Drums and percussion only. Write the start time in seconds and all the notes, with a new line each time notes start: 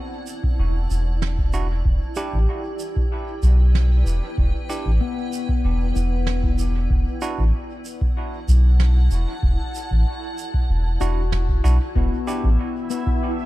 0.27 shaker
0.44 kick
0.91 shaker
1.22 snare
1.38 kick
1.53 shaker
1.85 kick
2.15 shaker
2.33 kick
2.79 shaker
2.96 kick
3.43 shaker
3.75 snare
4.07 shaker
4.38 kick
4.70 shaker
4.86 kick
5.33 shaker
5.49 kick
5.96 shaker
6.27 snare
6.44 kick
6.58 shaker
6.90 kick
7.22 shaker
7.38 kick
7.85 shaker
8.01 kick
8.49 shaker
8.80 snare
9.11 shaker
9.43 kick
9.75 shaker
9.91 kick
10.38 shaker
10.54 kick
11.01 shaker
11.32 snare
11.49 kick
11.65 shaker
11.95 kick
12.28 shaker
12.44 kick
12.90 shaker
13.07 kick